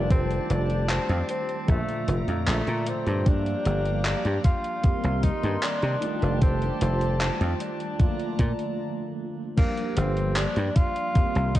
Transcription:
0.00 0.38 F1 medium
0.00 1.60 D#3 medium
0.00 1.60 G3 medium
0.00 1.61 A3 medium
0.00 1.61 D4 medium
0.00 1.61 F4 medium
0.00 1.66 G4 medium
0.00 1.66 D5 medium
0.00 1.66 A5 medium
0.11 0.52 C4 medium
0.11 kick loud
0.11 closed hi-hat medium
0.31 closed hi-hat soft
0.50 0.97 F1 medium
0.50 0.92 D4 loud
0.50 closed hi-hat medium
0.70 closed hi-hat soft
0.89 1.30 C4 medium
0.89 clap loud
0.89 closed hi-hat medium
1.09 1.22 F2 loud
1.09 closed hi-hat soft
1.29 1.66 C4 medium
1.29 closed hi-hat medium
1.49 closed hi-hat soft
1.67 1.81 A#1 medium
1.67 3.19 A#2 medium
1.67 3.18 D3 medium
1.67 3.18 F3 medium
1.67 3.18 A3 medium
1.67 3.25 A3 medium
1.67 2.18 A3 medium
1.67 3.19 F4 medium
1.67 3.25 D5 medium
1.67 3.25 A#5 medium
1.67 kick loud
1.67 closed hi-hat medium
1.89 closed hi-hat soft
2.08 2.20 F1 loud
2.08 closed hi-hat medium
2.28 2.49 F2 loud
2.28 closed hi-hat soft
2.47 2.60 A#1 medium
2.47 2.90 A3 medium
2.47 clap loud
2.47 closed hi-hat medium
2.67 2.92 A#2 medium
2.67 closed hi-hat soft
2.86 3.29 C4 medium
2.86 closed hi-hat medium
3.06 3.54 G2 medium
3.06 closed hi-hat soft
3.25 4.76 F3 medium
3.25 4.76 G3 medium
3.25 4.76 A#3 medium
3.25 4.77 D4 medium
3.25 4.05 D4 loud
3.25 4.83 G4 medium
3.25 4.77 G4 medium
3.25 4.83 F5 medium
3.25 4.83 A#5 medium
3.25 kick loud
3.25 closed hi-hat medium
3.46 closed hi-hat soft
3.65 4.13 G1 loud
3.65 closed hi-hat medium
3.85 closed hi-hat soft
4.05 4.42 D4 medium
4.05 clap loud
4.05 closed hi-hat medium
4.25 4.37 G2 medium
4.25 closed hi-hat soft
4.44 5.25 F4 loud
4.44 kick loud
4.44 closed hi-hat medium
4.64 closed hi-hat soft
4.83 5.94 D#3 medium
4.83 5.94 G3 medium
4.83 5.95 A#3 medium
4.83 5.95 C4 medium
4.83 5.96 G4 medium
4.83 6.01 A#4 medium
4.83 6.01 C6 medium
4.83 muted slap bass stroke soft
4.83 kick loud
4.83 closed hi-hat medium
5.04 5.28 C2 medium
5.04 closed hi-hat soft
5.23 5.63 D#4 loud
5.23 kick medium
5.23 closed hi-hat medium
5.43 5.56 G2 loud
5.43 closed hi-hat soft
5.63 6.38 D4 loud
5.63 clap loud
5.63 closed hi-hat medium
5.82 5.95 C3 medium
5.82 closed hi-hat soft
6.01 7.91 D#3 medium
6.01 7.92 G3 medium
6.01 7.92 A3 medium
6.01 7.92 D4 medium
6.01 7.93 F4 loud
6.01 7.98 G4 medium
6.01 8.76 D5 medium
6.01 7.98 A5 medium
6.01 closed hi-hat medium
6.22 6.70 F1 medium
6.22 closed hi-hat soft
6.42 6.79 C4 medium
6.42 kick loud
6.42 closed hi-hat medium
6.62 closed hi-hat soft
6.81 7.29 F1 loud
6.81 7.30 C4 medium
6.81 closed hi-hat medium
7.01 closed hi-hat soft
7.21 clap loud
7.21 closed hi-hat medium
7.41 7.53 F2 loud
7.41 closed hi-hat soft
7.60 8.75 D4 medium
7.60 closed hi-hat medium
7.80 closed hi-hat soft
7.98 8.78 D3 medium
7.98 8.78 F3 medium
7.98 8.79 A3 medium
7.98 8.79 A#3 medium
7.98 8.80 F4 medium
7.98 8.78 A5 medium
7.98 8.78 A#5 medium
7.98 kick loud
7.98 closed hi-hat medium
8.20 closed hi-hat soft
8.39 8.52 A#2 medium
8.39 kick medium
8.39 closed hi-hat medium
8.59 closed hi-hat soft
9.56 11.07 F3 medium
9.56 11.07 G3 medium
9.56 11.08 A#3 medium
9.56 9.99 A#3 loud
9.56 11.08 D4 medium
9.56 11.09 G4 medium
9.56 kick loud
9.56 closed hi-hat medium
9.56 crash loud
9.77 closed hi-hat soft
9.97 10.45 G1 loud
9.97 10.38 C4 loud
9.97 closed hi-hat medium
10.17 closed hi-hat soft
10.36 10.78 D4 loud
10.36 clap loud
10.36 closed hi-hat medium
10.56 10.69 G2 loud
10.56 closed hi-hat soft
10.76 11.57 F4 loud
10.76 kick loud
10.76 closed hi-hat medium
10.96 closed hi-hat soft
11.14 11.60 D#3 medium
11.14 11.60 G3 medium
11.14 11.60 A#3 medium
11.14 11.60 C4 medium
11.14 11.60 G4 medium
11.14 muted slap bass stroke soft
11.14 kick loud
11.14 closed hi-hat medium
11.35 11.60 C2 medium
11.35 closed hi-hat soft
11.55 11.60 D#4 loud
11.55 kick medium
11.55 closed hi-hat loud

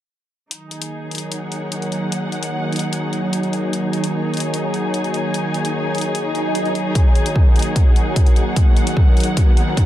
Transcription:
0.51 6.91 D#3 medium
0.51 6.91 F#3 medium
0.51 6.91 A#3 medium
0.51 9.86 D#4 medium
0.51 6.91 F#4 medium
0.51 3.70 A#4 medium
0.51 closed hi-hat medium
0.71 9.86 G#4 medium
0.71 closed hi-hat soft
0.82 closed hi-hat medium
1.06 9.86 C#5 medium
1.11 closed hi-hat soft
1.15 closed hi-hat medium
1.18 closed hi-hat medium
1.28 4.03 F#5 medium
1.28 closed hi-hat medium
1.52 closed hi-hat soft
1.72 closed hi-hat medium
1.82 closed hi-hat soft
1.92 closed hi-hat soft
2.12 closed hi-hat medium
2.32 closed hi-hat medium
2.43 closed hi-hat medium
2.72 closed hi-hat soft
2.76 closed hi-hat medium
2.79 closed hi-hat medium
2.93 closed hi-hat medium
3.13 closed hi-hat soft
3.33 closed hi-hat medium
3.43 closed hi-hat soft
3.53 closed hi-hat medium
3.73 6.92 G#4 medium
3.73 closed hi-hat medium
3.91 8.48 G#5 medium
3.91 closed hi-hat soft
4.04 closed hi-hat medium
4.34 closed hi-hat soft
4.37 closed hi-hat medium
4.40 closed hi-hat medium
4.54 closed hi-hat medium
4.74 closed hi-hat soft
4.94 closed hi-hat medium
5.04 closed hi-hat soft
5.14 closed hi-hat soft
5.34 closed hi-hat medium
5.54 closed hi-hat soft
5.65 closed hi-hat medium
5.95 closed hi-hat soft
5.98 closed hi-hat medium
6.01 closed hi-hat medium
6.15 closed hi-hat medium
6.15 swell medium
6.35 closed hi-hat soft
6.55 closed hi-hat medium
6.65 closed hi-hat soft
6.75 closed hi-hat soft
6.95 9.86 D#3 medium
6.95 9.86 F#3 medium
6.95 9.86 A#3 medium
6.95 9.86 F#4 medium
6.95 9.86 A#4 medium
6.95 kick medium
6.95 closed hi-hat medium
6.95 riser medium
7.15 closed hi-hat medium
7.26 closed hi-hat medium
7.36 kick medium
7.45 9.86 F#5 medium
7.56 closed hi-hat soft
7.59 closed hi-hat medium
7.62 closed hi-hat medium
7.76 kick medium
7.76 closed hi-hat medium
7.96 closed hi-hat medium
8.16 kick medium
8.16 closed hi-hat medium
8.27 closed hi-hat soft
8.36 closed hi-hat soft
8.56 kick medium
8.56 closed hi-hat medium
8.77 closed hi-hat medium
8.87 closed hi-hat medium
8.97 kick medium
9.17 closed hi-hat soft
9.20 closed hi-hat medium
9.23 closed hi-hat medium
9.37 kick medium
9.37 closed hi-hat medium
9.57 closed hi-hat soft
9.77 kick medium
9.77 closed hi-hat medium

